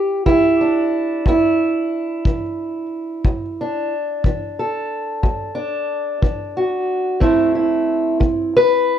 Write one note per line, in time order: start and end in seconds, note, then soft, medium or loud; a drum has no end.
0.00 0.26 G4 medium
0.26 0.86 E3 medium
0.26 1.26 E4 medium
0.26 kick medium
0.61 3.21 D4 soft
1.26 1.86 E2 medium
1.26 3.92 E4 medium
1.26 kick medium
2.25 2.86 E3 medium
2.25 kick medium
3.24 3.85 E2 medium
3.24 kick medium
3.61 5.54 D4 medium
4.24 4.85 E3 medium
4.24 kick medium
4.59 6.57 A4 medium
5.23 5.83 E2 medium
5.23 kick medium
5.55 7.17 D4 medium
6.22 6.82 E3 medium
6.22 kick medium
6.57 7.19 F#4 medium
7.20 7.81 A2 medium
7.20 8.20 A3 medium
7.20 8.99 C4 medium
7.20 7.55 E4 medium
7.20 kick medium
7.55 8.99 E4 soft
8.20 8.80 A3 medium
8.20 kick medium
8.56 8.99 B4 loud